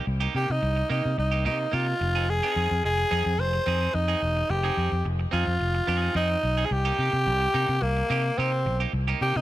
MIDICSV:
0, 0, Header, 1, 5, 480
1, 0, Start_track
1, 0, Key_signature, -3, "minor"
1, 0, Tempo, 554017
1, 59, Time_signature, 4, 2, 24, 8
1, 8155, End_track
2, 0, Start_track
2, 0, Title_t, "Tenor saxophone"
2, 0, Program_c, 0, 66
2, 314, Note_on_c, 0, 67, 86
2, 444, Note_on_c, 0, 63, 96
2, 457, Note_off_c, 0, 67, 0
2, 783, Note_off_c, 0, 63, 0
2, 789, Note_on_c, 0, 63, 82
2, 1007, Note_off_c, 0, 63, 0
2, 1031, Note_on_c, 0, 63, 81
2, 1248, Note_off_c, 0, 63, 0
2, 1271, Note_on_c, 0, 63, 87
2, 1510, Note_on_c, 0, 65, 95
2, 1523, Note_off_c, 0, 63, 0
2, 1992, Note_on_c, 0, 68, 109
2, 2005, Note_off_c, 0, 65, 0
2, 2464, Note_off_c, 0, 68, 0
2, 2472, Note_on_c, 0, 68, 107
2, 2945, Note_on_c, 0, 72, 98
2, 2958, Note_off_c, 0, 68, 0
2, 3418, Note_on_c, 0, 63, 98
2, 3431, Note_off_c, 0, 72, 0
2, 3897, Note_on_c, 0, 67, 92
2, 3910, Note_off_c, 0, 63, 0
2, 4384, Note_off_c, 0, 67, 0
2, 4619, Note_on_c, 0, 65, 96
2, 5302, Note_off_c, 0, 65, 0
2, 5341, Note_on_c, 0, 63, 105
2, 5766, Note_on_c, 0, 68, 77
2, 5779, Note_off_c, 0, 63, 0
2, 5830, Note_on_c, 0, 67, 115
2, 5843, Note_off_c, 0, 68, 0
2, 6780, Note_on_c, 0, 58, 97
2, 6793, Note_off_c, 0, 67, 0
2, 7262, Note_on_c, 0, 60, 85
2, 7275, Note_off_c, 0, 58, 0
2, 7626, Note_off_c, 0, 60, 0
2, 7986, Note_on_c, 0, 67, 96
2, 8112, Note_on_c, 0, 63, 97
2, 8125, Note_off_c, 0, 67, 0
2, 8155, Note_off_c, 0, 63, 0
2, 8155, End_track
3, 0, Start_track
3, 0, Title_t, "Clean electric guitar"
3, 0, Program_c, 1, 27
3, 177, Note_on_c, 1, 67, 96
3, 185, Note_on_c, 1, 63, 90
3, 192, Note_on_c, 1, 58, 72
3, 287, Note_off_c, 1, 58, 0
3, 292, Note_off_c, 1, 63, 0
3, 297, Note_on_c, 1, 58, 72
3, 301, Note_off_c, 1, 67, 0
3, 302, Note_on_c, 1, 63, 74
3, 312, Note_on_c, 1, 67, 67
3, 413, Note_off_c, 1, 67, 0
3, 419, Note_off_c, 1, 63, 0
3, 448, Note_off_c, 1, 58, 0
3, 775, Note_on_c, 1, 58, 91
3, 781, Note_on_c, 1, 63, 89
3, 788, Note_on_c, 1, 67, 97
3, 893, Note_off_c, 1, 67, 0
3, 904, Note_off_c, 1, 63, 0
3, 965, Note_off_c, 1, 58, 0
3, 1139, Note_on_c, 1, 67, 67
3, 1147, Note_on_c, 1, 63, 61
3, 1156, Note_on_c, 1, 58, 52
3, 1243, Note_off_c, 1, 58, 0
3, 1249, Note_off_c, 1, 63, 0
3, 1253, Note_off_c, 1, 67, 0
3, 1254, Note_on_c, 1, 58, 80
3, 1260, Note_on_c, 1, 63, 98
3, 1264, Note_on_c, 1, 67, 96
3, 1373, Note_off_c, 1, 67, 0
3, 1382, Note_off_c, 1, 63, 0
3, 1444, Note_off_c, 1, 58, 0
3, 1484, Note_on_c, 1, 58, 88
3, 1495, Note_on_c, 1, 63, 81
3, 1499, Note_on_c, 1, 67, 88
3, 1616, Note_off_c, 1, 67, 0
3, 1623, Note_off_c, 1, 63, 0
3, 1679, Note_off_c, 1, 58, 0
3, 1865, Note_on_c, 1, 68, 67
3, 1870, Note_on_c, 1, 63, 59
3, 1879, Note_on_c, 1, 60, 49
3, 1964, Note_off_c, 1, 60, 0
3, 1969, Note_off_c, 1, 63, 0
3, 1975, Note_off_c, 1, 68, 0
3, 2107, Note_on_c, 1, 68, 95
3, 2113, Note_on_c, 1, 63, 94
3, 2120, Note_on_c, 1, 60, 91
3, 2205, Note_off_c, 1, 60, 0
3, 2212, Note_off_c, 1, 63, 0
3, 2215, Note_on_c, 1, 60, 58
3, 2218, Note_off_c, 1, 68, 0
3, 2222, Note_on_c, 1, 63, 67
3, 2229, Note_on_c, 1, 68, 68
3, 2328, Note_off_c, 1, 68, 0
3, 2339, Note_off_c, 1, 63, 0
3, 2366, Note_off_c, 1, 60, 0
3, 2691, Note_on_c, 1, 60, 81
3, 2696, Note_on_c, 1, 63, 97
3, 2707, Note_on_c, 1, 68, 102
3, 2809, Note_off_c, 1, 68, 0
3, 2819, Note_off_c, 1, 63, 0
3, 2882, Note_off_c, 1, 60, 0
3, 3173, Note_on_c, 1, 60, 74
3, 3181, Note_on_c, 1, 63, 75
3, 3187, Note_on_c, 1, 68, 90
3, 3291, Note_off_c, 1, 68, 0
3, 3297, Note_off_c, 1, 63, 0
3, 3302, Note_on_c, 1, 68, 69
3, 3303, Note_off_c, 1, 60, 0
3, 3308, Note_on_c, 1, 63, 51
3, 3313, Note_on_c, 1, 60, 51
3, 3400, Note_off_c, 1, 60, 0
3, 3403, Note_off_c, 1, 63, 0
3, 3410, Note_off_c, 1, 68, 0
3, 3537, Note_on_c, 1, 68, 96
3, 3543, Note_on_c, 1, 63, 77
3, 3548, Note_on_c, 1, 60, 74
3, 3644, Note_off_c, 1, 60, 0
3, 3649, Note_off_c, 1, 63, 0
3, 3654, Note_off_c, 1, 68, 0
3, 4019, Note_on_c, 1, 68, 101
3, 4028, Note_on_c, 1, 63, 91
3, 4033, Note_on_c, 1, 60, 77
3, 4122, Note_off_c, 1, 60, 0
3, 4130, Note_off_c, 1, 63, 0
3, 4133, Note_on_c, 1, 60, 62
3, 4138, Note_off_c, 1, 68, 0
3, 4140, Note_on_c, 1, 63, 71
3, 4148, Note_on_c, 1, 68, 68
3, 4248, Note_off_c, 1, 68, 0
3, 4259, Note_off_c, 1, 63, 0
3, 4285, Note_off_c, 1, 60, 0
3, 4603, Note_on_c, 1, 60, 85
3, 4613, Note_on_c, 1, 63, 94
3, 4620, Note_on_c, 1, 68, 87
3, 4724, Note_off_c, 1, 68, 0
3, 4735, Note_off_c, 1, 63, 0
3, 4798, Note_off_c, 1, 60, 0
3, 5087, Note_on_c, 1, 60, 80
3, 5093, Note_on_c, 1, 63, 92
3, 5099, Note_on_c, 1, 68, 103
3, 5204, Note_off_c, 1, 68, 0
3, 5209, Note_off_c, 1, 63, 0
3, 5214, Note_on_c, 1, 68, 65
3, 5218, Note_off_c, 1, 60, 0
3, 5219, Note_on_c, 1, 63, 58
3, 5323, Note_off_c, 1, 63, 0
3, 5328, Note_on_c, 1, 60, 90
3, 5330, Note_off_c, 1, 68, 0
3, 5334, Note_on_c, 1, 63, 90
3, 5340, Note_on_c, 1, 68, 83
3, 5449, Note_off_c, 1, 68, 0
3, 5457, Note_off_c, 1, 63, 0
3, 5520, Note_off_c, 1, 60, 0
3, 5696, Note_on_c, 1, 68, 68
3, 5705, Note_on_c, 1, 63, 59
3, 5711, Note_on_c, 1, 60, 48
3, 5807, Note_off_c, 1, 63, 0
3, 5809, Note_off_c, 1, 60, 0
3, 5819, Note_off_c, 1, 68, 0
3, 5935, Note_on_c, 1, 67, 87
3, 5940, Note_on_c, 1, 63, 79
3, 5949, Note_on_c, 1, 58, 76
3, 6040, Note_off_c, 1, 58, 0
3, 6047, Note_off_c, 1, 63, 0
3, 6050, Note_on_c, 1, 58, 60
3, 6052, Note_off_c, 1, 67, 0
3, 6057, Note_on_c, 1, 63, 70
3, 6062, Note_on_c, 1, 67, 67
3, 6170, Note_off_c, 1, 67, 0
3, 6178, Note_off_c, 1, 63, 0
3, 6203, Note_off_c, 1, 58, 0
3, 6532, Note_on_c, 1, 58, 84
3, 6539, Note_on_c, 1, 63, 96
3, 6547, Note_on_c, 1, 67, 87
3, 6653, Note_off_c, 1, 67, 0
3, 6667, Note_off_c, 1, 63, 0
3, 6722, Note_off_c, 1, 58, 0
3, 7016, Note_on_c, 1, 58, 80
3, 7022, Note_on_c, 1, 63, 91
3, 7030, Note_on_c, 1, 67, 99
3, 7131, Note_off_c, 1, 67, 0
3, 7141, Note_off_c, 1, 63, 0
3, 7204, Note_off_c, 1, 58, 0
3, 7258, Note_on_c, 1, 58, 75
3, 7269, Note_on_c, 1, 63, 92
3, 7275, Note_on_c, 1, 67, 94
3, 7373, Note_off_c, 1, 67, 0
3, 7384, Note_off_c, 1, 63, 0
3, 7445, Note_off_c, 1, 58, 0
3, 7626, Note_on_c, 1, 67, 66
3, 7634, Note_on_c, 1, 63, 63
3, 7638, Note_on_c, 1, 58, 59
3, 7728, Note_off_c, 1, 58, 0
3, 7731, Note_off_c, 1, 63, 0
3, 7737, Note_off_c, 1, 67, 0
3, 7864, Note_on_c, 1, 67, 96
3, 7873, Note_on_c, 1, 63, 102
3, 7882, Note_on_c, 1, 58, 84
3, 7970, Note_off_c, 1, 58, 0
3, 7976, Note_off_c, 1, 63, 0
3, 7981, Note_on_c, 1, 58, 61
3, 7983, Note_off_c, 1, 67, 0
3, 7987, Note_on_c, 1, 63, 73
3, 7994, Note_on_c, 1, 67, 81
3, 8095, Note_off_c, 1, 67, 0
3, 8103, Note_off_c, 1, 63, 0
3, 8129, Note_off_c, 1, 58, 0
3, 8155, End_track
4, 0, Start_track
4, 0, Title_t, "Fingered electric bass"
4, 0, Program_c, 2, 33
4, 63, Note_on_c, 2, 36, 118
4, 230, Note_off_c, 2, 36, 0
4, 300, Note_on_c, 2, 48, 102
4, 389, Note_off_c, 2, 48, 0
4, 431, Note_on_c, 2, 48, 104
4, 508, Note_off_c, 2, 48, 0
4, 542, Note_on_c, 2, 36, 108
4, 709, Note_off_c, 2, 36, 0
4, 781, Note_on_c, 2, 48, 98
4, 869, Note_off_c, 2, 48, 0
4, 914, Note_on_c, 2, 48, 113
4, 990, Note_off_c, 2, 48, 0
4, 1023, Note_on_c, 2, 36, 107
4, 1263, Note_on_c, 2, 48, 95
4, 1276, Note_off_c, 2, 36, 0
4, 1430, Note_off_c, 2, 48, 0
4, 1501, Note_on_c, 2, 48, 109
4, 1669, Note_off_c, 2, 48, 0
4, 1740, Note_on_c, 2, 29, 115
4, 2077, Note_off_c, 2, 29, 0
4, 2221, Note_on_c, 2, 41, 92
4, 2309, Note_off_c, 2, 41, 0
4, 2350, Note_on_c, 2, 41, 106
4, 2427, Note_off_c, 2, 41, 0
4, 2462, Note_on_c, 2, 29, 93
4, 2629, Note_off_c, 2, 29, 0
4, 2702, Note_on_c, 2, 41, 102
4, 2789, Note_off_c, 2, 41, 0
4, 2826, Note_on_c, 2, 41, 112
4, 2905, Note_off_c, 2, 41, 0
4, 2934, Note_on_c, 2, 29, 114
4, 3104, Note_off_c, 2, 29, 0
4, 3179, Note_on_c, 2, 41, 98
4, 3347, Note_off_c, 2, 41, 0
4, 3417, Note_on_c, 2, 41, 103
4, 3586, Note_off_c, 2, 41, 0
4, 3659, Note_on_c, 2, 28, 102
4, 3827, Note_off_c, 2, 28, 0
4, 3899, Note_on_c, 2, 29, 126
4, 4067, Note_off_c, 2, 29, 0
4, 4135, Note_on_c, 2, 41, 83
4, 4225, Note_off_c, 2, 41, 0
4, 4264, Note_on_c, 2, 41, 97
4, 4343, Note_off_c, 2, 41, 0
4, 4378, Note_on_c, 2, 29, 103
4, 4546, Note_off_c, 2, 29, 0
4, 4617, Note_on_c, 2, 41, 106
4, 4706, Note_off_c, 2, 41, 0
4, 4742, Note_on_c, 2, 41, 106
4, 4822, Note_off_c, 2, 41, 0
4, 4855, Note_on_c, 2, 29, 107
4, 5024, Note_off_c, 2, 29, 0
4, 5094, Note_on_c, 2, 41, 86
4, 5264, Note_off_c, 2, 41, 0
4, 5329, Note_on_c, 2, 41, 109
4, 5500, Note_off_c, 2, 41, 0
4, 5574, Note_on_c, 2, 35, 102
4, 5744, Note_off_c, 2, 35, 0
4, 5813, Note_on_c, 2, 36, 110
4, 5983, Note_off_c, 2, 36, 0
4, 6053, Note_on_c, 2, 48, 102
4, 6144, Note_off_c, 2, 48, 0
4, 6179, Note_on_c, 2, 48, 94
4, 6294, Note_on_c, 2, 36, 98
4, 6307, Note_off_c, 2, 48, 0
4, 6464, Note_off_c, 2, 36, 0
4, 6536, Note_on_c, 2, 48, 109
4, 6625, Note_off_c, 2, 48, 0
4, 6662, Note_on_c, 2, 48, 115
4, 6742, Note_off_c, 2, 48, 0
4, 6775, Note_on_c, 2, 36, 101
4, 6944, Note_off_c, 2, 36, 0
4, 7018, Note_on_c, 2, 48, 95
4, 7186, Note_off_c, 2, 48, 0
4, 7264, Note_on_c, 2, 48, 101
4, 7499, Note_on_c, 2, 35, 98
4, 7512, Note_off_c, 2, 48, 0
4, 7667, Note_off_c, 2, 35, 0
4, 7740, Note_on_c, 2, 36, 115
4, 7907, Note_off_c, 2, 36, 0
4, 7980, Note_on_c, 2, 48, 99
4, 8068, Note_off_c, 2, 48, 0
4, 8110, Note_on_c, 2, 48, 107
4, 8155, Note_off_c, 2, 48, 0
4, 8155, End_track
5, 0, Start_track
5, 0, Title_t, "Muted clean electric guitar strokes"
5, 52, Note_on_c, 9, 29, 40
5, 138, Note_off_c, 9, 29, 0
5, 423, Note_on_c, 9, 29, 50
5, 510, Note_off_c, 9, 29, 0
5, 533, Note_on_c, 9, 29, 38
5, 620, Note_off_c, 9, 29, 0
5, 662, Note_on_c, 9, 29, 49
5, 749, Note_off_c, 9, 29, 0
5, 903, Note_on_c, 9, 29, 43
5, 990, Note_off_c, 9, 29, 0
5, 1018, Note_on_c, 9, 29, 42
5, 1105, Note_off_c, 9, 29, 0
5, 1384, Note_on_c, 9, 29, 54
5, 1470, Note_off_c, 9, 29, 0
5, 1626, Note_on_c, 9, 29, 45
5, 1713, Note_off_c, 9, 29, 0
5, 1736, Note_on_c, 9, 29, 46
5, 1822, Note_off_c, 9, 29, 0
5, 2338, Note_on_c, 9, 29, 55
5, 2425, Note_off_c, 9, 29, 0
5, 2457, Note_on_c, 9, 29, 44
5, 2543, Note_off_c, 9, 29, 0
5, 2577, Note_on_c, 9, 29, 49
5, 2664, Note_off_c, 9, 29, 0
5, 2819, Note_on_c, 9, 29, 52
5, 2906, Note_off_c, 9, 29, 0
5, 2936, Note_on_c, 9, 29, 48
5, 3022, Note_off_c, 9, 29, 0
5, 3062, Note_on_c, 9, 29, 42
5, 3148, Note_off_c, 9, 29, 0
5, 3410, Note_on_c, 9, 29, 45
5, 3497, Note_off_c, 9, 29, 0
5, 3655, Note_on_c, 9, 29, 44
5, 3741, Note_off_c, 9, 29, 0
5, 3783, Note_on_c, 9, 29, 38
5, 3869, Note_off_c, 9, 29, 0
5, 3896, Note_on_c, 9, 29, 38
5, 3983, Note_off_c, 9, 29, 0
5, 4258, Note_on_c, 9, 29, 47
5, 4345, Note_off_c, 9, 29, 0
5, 4375, Note_on_c, 9, 29, 47
5, 4462, Note_off_c, 9, 29, 0
5, 4501, Note_on_c, 9, 29, 50
5, 4588, Note_off_c, 9, 29, 0
5, 4734, Note_on_c, 9, 29, 47
5, 4821, Note_off_c, 9, 29, 0
5, 4851, Note_on_c, 9, 29, 38
5, 4938, Note_off_c, 9, 29, 0
5, 4978, Note_on_c, 9, 29, 51
5, 5065, Note_off_c, 9, 29, 0
5, 5459, Note_on_c, 9, 29, 52
5, 5546, Note_off_c, 9, 29, 0
5, 5571, Note_on_c, 9, 29, 41
5, 5658, Note_off_c, 9, 29, 0
5, 5813, Note_on_c, 9, 29, 43
5, 5899, Note_off_c, 9, 29, 0
5, 6180, Note_on_c, 9, 29, 37
5, 6267, Note_off_c, 9, 29, 0
5, 6295, Note_on_c, 9, 29, 37
5, 6381, Note_off_c, 9, 29, 0
5, 6424, Note_on_c, 9, 29, 56
5, 6511, Note_off_c, 9, 29, 0
5, 6663, Note_on_c, 9, 29, 38
5, 6750, Note_off_c, 9, 29, 0
5, 6903, Note_on_c, 9, 29, 45
5, 6990, Note_off_c, 9, 29, 0
5, 7141, Note_on_c, 9, 29, 47
5, 7228, Note_off_c, 9, 29, 0
5, 7383, Note_on_c, 9, 29, 42
5, 7470, Note_off_c, 9, 29, 0
5, 7504, Note_on_c, 9, 29, 45
5, 7591, Note_off_c, 9, 29, 0
5, 7738, Note_on_c, 9, 29, 35
5, 7825, Note_off_c, 9, 29, 0
5, 8105, Note_on_c, 9, 29, 59
5, 8155, Note_off_c, 9, 29, 0
5, 8155, End_track
0, 0, End_of_file